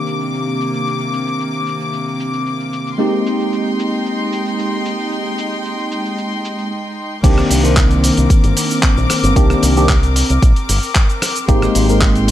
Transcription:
Already playing: string section C3 A#3 D6, tine electric piano D#3 A#3 C4 D4 G4
0.07 shaker
0.21 shaker
0.34 shaker
0.48 shaker
0.61 shaker
0.74 shaker
0.87 shaker
1.01 shaker
1.13 shaker
1.27 shaker
1.40 shaker
1.54 shaker
1.67 shaker
1.80 shaker
1.93 shaker
2.07 shaker
2.20 shaker
2.34 shaker
2.46 shaker
2.60 shaker
2.73 shaker
2.87 shaker
2.98 tine electric piano G#3 A#3 C4 D#4 G4, string section G#3 D#4 G5 C6, shaker
3.14 shaker
3.26 shaker
3.40 shaker
3.53 shaker
3.67 shaker
3.79 shaker
3.93 shaker
4.06 shaker
4.20 shaker
4.33 shaker
4.46 shaker
4.59 shaker
4.73 shaker
4.86 shaker
4.99 shaker
5.12 shaker
5.26 shaker
5.38 shaker
5.52 shaker
5.65 shaker
5.79 shaker
5.92 shaker
6.05 shaker
6.18 shaker
6.32 shaker
6.45 shaker
6.59 shaker
7.23 fingered electric bass C2, tine electric piano D#3 A#3 C4 D4 G4, string section C4 A#4 D6, kick, closed hi-hat, crash, shaker
7.38 cross-stick, shaker
7.50 fingered electric bass C2, open hi-hat, shaker
7.63 tine electric piano D#3 A#3 C4 D4 C5, shaker
7.77 kick, clap, closed hi-hat, shaker
7.91 closed hi-hat, shaker
8.04 open hi-hat, shaker
8.17 fingered electric bass C2, closed hi-hat, shaker
8.30 kick, closed hi-hat, shaker
8.44 fingered electric bass G1, closed hi-hat, shaker
8.57 open hi-hat, shaker
8.71 shaker
8.83 kick, clap, closed hi-hat, shaker
8.97 fingered electric bass A#1, shaker
9.10 cross-stick, open hi-hat, shaker
9.23 fingered electric bass G1, closed hi-hat, shaker
9.36 fingered electric bass C2, tine electric piano D#3 A#3 C4 D4 G4, kick, closed hi-hat, shaker
9.50 cross-stick, shaker
9.63 fingered electric bass C2, open hi-hat, shaker
9.76 tine electric piano D#3 A#3 C4 D4 G4, shaker
9.89 kick, clap, closed hi-hat, shaker
10.03 closed hi-hat, shaker
10.16 open hi-hat, shaker
10.30 fingered electric bass C2, closed hi-hat, shaker
10.42 fingered electric bass A#1, kick, closed hi-hat, shaker
10.56 closed hi-hat, shaker
10.69 fingered electric bass G1, open hi-hat, shaker
10.83 shaker
10.95 kick, clap, closed hi-hat, shaker
11.09 shaker
11.22 cross-stick, open hi-hat, shaker
11.36 closed hi-hat, shaker
11.48 fingered electric bass G#1, tine electric piano G#3 A#3 C4 D#4 G4, string section G#3 G4 G5 C6, kick, closed hi-hat, shaker
11.62 cross-stick, shaker
11.75 fingered electric bass G#1, open hi-hat, shaker
11.88 tine electric piano G#3 A#3 C4 D#4 A#4, shaker
12.01 kick, clap, closed hi-hat, shaker
12.16 closed hi-hat, shaker

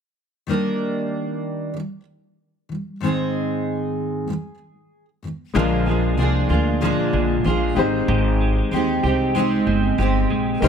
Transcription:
0.47 steel-string acoustic guitar D#3 G3 A#3 D4 A#4
1.74 steel-string acoustic guitar D#3 G3
2.69 steel-string acoustic guitar D#3 G3
3.00 steel-string acoustic guitar G#2 D#3 G#3 C4 D#4
3.05 steel-string acoustic guitar G#4
4.28 steel-string acoustic guitar G#2 D#3 G#3
5.23 steel-string acoustic guitar G#2 D#3 G#3
5.54 upright bass A#1, steel-string acoustic guitar A#2 D3 F3 A#3 D4 G#4, clean electric guitar F3 F4, grand piano G#3 D4 F4
5.58 grand piano A#4
5.86 steel-string acoustic guitar F3 A#3 D4 G#4, clean electric guitar G#3
6.17 upright bass C2, steel-string acoustic guitar F3 A#3 D4 G#4, clean electric guitar D4
6.49 upright bass D2, steel-string acoustic guitar F3 A#3 D4 G#4, clean electric guitar F4
6.81 steel-string acoustic guitar A#2 D3 F3 A#3 D4 G#4, clean electric guitar G#3
7.13 upright bass A#1, clean electric guitar D4
7.44 upright bass A#1, steel-string acoustic guitar F3 A#3 D4 G#4, clean electric guitar F4
7.75 upright bass G#1, clean electric guitar D#3, grand piano G#3 D#4 G4 C5, steel-string acoustic guitar G#3 C4 D#4 G4
8.08 upright bass G#1, clean electric guitar D#3 G4
8.40 clean electric guitar G#3
8.71 upright bass D#2, steel-string acoustic guitar G#3 C4 D#4 G4, clean electric guitar C4
9.03 upright bass C2, steel-string acoustic guitar C4 D#4 G4, clean electric guitar G4
9.35 steel-string acoustic guitar G#3 C4 D#4 G4, clean electric guitar G#3
9.67 upright bass G1, clean electric guitar C4
9.98 upright bass G1, steel-string acoustic guitar G#3 C4 D#4 G4, clean electric guitar G4
10.30 upright bass A#1, clean electric guitar G#3
10.60 upright bass C2, steel-string acoustic guitar C3 G3 A#3 D#4 A#4, grand piano A#3 D#4 G4 C5, clean electric guitar G4

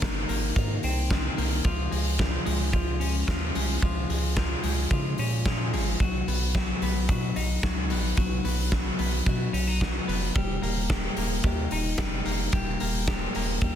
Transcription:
Already playing: clean electric guitar A#3 C4
0.02 sub bass G1, clean electric guitar D#3, kick, snare, closed hi-hat
0.29 sub bass G#1, clean electric guitar A#3, open hi-hat
0.56 sub bass G#2, clean electric guitar D#3, kick, closed hi-hat
0.83 sub bass C2, clean electric guitar C4, open hi-hat
1.11 clean electric guitar D#3, kick, snare, closed hi-hat
1.38 sub bass C2, clean electric guitar A#3, open hi-hat
1.64 sub bass C#2, clean electric guitar F3, kick, closed hi-hat
1.91 sub bass C#2, clean electric guitar G#3, open hi-hat
2.19 clean electric guitar F3, kick, snare, closed hi-hat
2.46 sub bass C#2, clean electric guitar G#3, open hi-hat
2.73 clean electric guitar F3, kick, closed hi-hat
3.00 clean electric guitar C#4, open hi-hat
3.27 sub bass D#2, clean electric guitar F3, kick, snare, closed hi-hat
3.55 sub bass C2, clean electric guitar G#3, open hi-hat
3.82 sub bass C#2, clean electric guitar F3, kick, closed hi-hat
4.10 sub bass C#2, clean electric guitar G#3, open hi-hat
4.37 clean electric guitar F3, kick, snare, closed hi-hat
4.64 sub bass C#2, clean electric guitar G#3, open hi-hat
4.91 sub bass C#3, clean electric guitar F3, kick, closed hi-hat
5.18 sub bass A#2, clean electric guitar C#4, open hi-hat
5.46 clean electric guitar F3, kick, snare, closed hi-hat
5.73 sub bass G#1, clean electric guitar G#3, open hi-hat
6.00 sub bass B1, clean electric guitar F#3, kick, closed hi-hat
6.27 sub bass B1, clean electric guitar B3, open hi-hat
6.55 clean electric guitar F#3, kick, snare, closed hi-hat
6.82 sub bass B1, clean electric guitar B3, open hi-hat
7.09 sub bass B2, clean electric guitar F#3, kick, closed hi-hat
7.36 sub bass B1, clean electric guitar D#4, open hi-hat
7.63 sub bass C#2, clean electric guitar F#3, kick, snare, closed hi-hat
7.90 sub bass A#1, clean electric guitar B3, open hi-hat
8.17 sub bass B1, clean electric guitar F#3, kick, closed hi-hat
8.45 sub bass B1, clean electric guitar B3, open hi-hat
8.72 clean electric guitar F#3, kick, snare, closed hi-hat
8.99 sub bass B1, clean electric guitar B3, open hi-hat
9.26 sub bass B2, clean electric guitar F#3, kick, closed hi-hat
9.53 sub bass B1, clean electric guitar C#4, open hi-hat
9.68 clean electric guitar D#4
9.81 clean electric guitar F#3, kick, snare, closed hi-hat
10.08 sub bass F1, clean electric guitar B3, open hi-hat
10.35 sub bass D#1, clean electric guitar G3, kick, closed hi-hat
10.62 sub bass D#1, clean electric guitar A#3, open hi-hat
10.90 clean electric guitar G3, kick, snare, closed hi-hat
11.17 sub bass D#1, clean electric guitar A#3, open hi-hat
11.44 sub bass D#2, clean electric guitar G3, kick, closed hi-hat
11.71 sub bass D#1, clean electric guitar D#4, open hi-hat
11.98 sub bass F1, clean electric guitar G3, kick, snare, closed hi-hat
12.25 sub bass F1, clean electric guitar A#3, open hi-hat
12.52 sub bass D#1, clean electric guitar G3, kick, closed hi-hat
12.80 sub bass D#1, clean electric guitar A#3, open hi-hat
13.08 clean electric guitar G3, kick, snare, closed hi-hat
13.35 sub bass D#1, clean electric guitar A#3, open hi-hat
13.61 sub bass D#2, clean electric guitar G3, kick, closed hi-hat

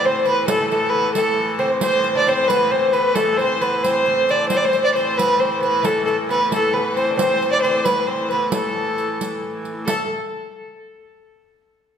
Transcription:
Already playing: hurdy-gurdy A2 E3
0.04 lute C4, viola da gamba C5, fiddle C5
0.26 lute B3, viola da gamba B4, fiddle B4, riq
0.48 lute A3, fiddle A4, viola da gamba A4, riq
0.54 lute A3
0.61 lute A3
0.70 lute A3, fiddle A4, riq
0.90 fiddle B4
0.94 lute B3
1.14 lute A3, fiddle A4, viola da gamba A4, riq
1.59 lute C4, fiddle C5, viola da gamba C5, riq
1.81 lute C4, fiddle C5, viola da gamba C5, riq
2.04 riq
2.15 lute D4, fiddle D5
2.27 lute C4, viola da gamba C5, fiddle C5, riq
2.48 lute B3, fiddle B4, viola da gamba B4, riq
2.71 lute C4, viola da gamba C5, fiddle C5
2.93 lute B3, fiddle B4, viola da gamba B4, riq
3.15 lute A3, fiddle A4, viola da gamba A4, riq
3.37 lute C4, fiddle C5, viola da gamba C5, riq
3.61 lute B3, fiddle B4, riq
3.83 lute C4, viola da gamba C5, fiddle C5, riq
4.06 lute C4, riq
4.29 lute D4, fiddle D5, riq
4.49 hurdy-gurdy A2 E3, lute C4, fiddle C5, viola da gamba C5, riq
4.57 fiddle D5
4.65 lute C4, fiddle C5
4.73 riq
4.84 fiddle D5, viola da gamba D5
4.95 lute C4, fiddle C5, viola da gamba C5, riq
5.17 lute B3, viola da gamba B4, fiddle B4, riq
5.39 lute C4, fiddle C5, viola da gamba C5
5.60 lute B3, fiddle B4, viola da gamba B4, riq
5.83 lute A3, fiddle A4, viola da gamba A4, riq
6.06 lute A3, fiddle A4, viola da gamba A4, riq
6.29 lute B3, viola da gamba B4, fiddle B4, riq
6.51 lute A3, viola da gamba A4, fiddle A4, riq
6.73 lute B3, viola da gamba B4, fiddle B4
6.96 lute C4, fiddle C5, viola da gamba C5, riq
7.10 lute D4
7.17 lute C4, fiddle C5, viola da gamba C5, riq
7.42 riq
7.52 lute D4, viola da gamba D5, fiddle D5
7.62 lute C4, fiddle C5, riq
7.84 lute B3, viola da gamba B4, fiddle B4, riq
8.07 lute C4, fiddle C5, viola da gamba C5
8.29 viola da gamba B4, fiddle B4, riq
8.33 lute B3
8.52 lute A3, viola da gamba A4, fiddle A4, riq
8.98 riq
9.21 riq
9.65 riq
9.86 lute A3, fiddle A4, viola da gamba A4, riq

